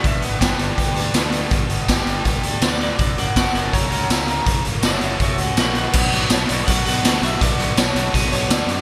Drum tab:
CC |--------|--------|--------|--------|
HH |xxxxxxxx|xxxxxxxx|xxxxxxxx|xxxxxxxx|
TB |--x---x-|--x---x-|--x---x-|--x---x-|
SD |--o---o-|--o---o-|--o---o-|--o---o-|
BD |o-o-o---|o-o-o---|o-o-o---|o---o---|

CC |x-------|--------|
HH |-xxxxxxx|xxxxxxxx|
TB |--x---x-|--x---x-|
SD |--o---o-|--o---o-|
BD |o---o---|o---o---|